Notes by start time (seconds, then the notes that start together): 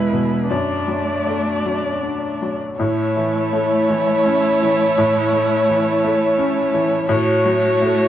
Already playing: E2 B2 G#3 B3 E4 B4
0.13 B2
0.49 F#2 A3 D4 D5
0.88 F#3
1.27 A3
1.65 F#3
2.03 D4
2.42 F#3
2.79 A2 A3 E4 C#5
3.17 E3
3.53 A3
3.90 E3
4.26 C#4
4.62 E3
4.98 A2
5.33 A3
5.69 E3
6.04 A3
6.38 C#4
6.74 E3
7.08 A2 A3 F#4 C#5
7.46 F#3
7.82 A3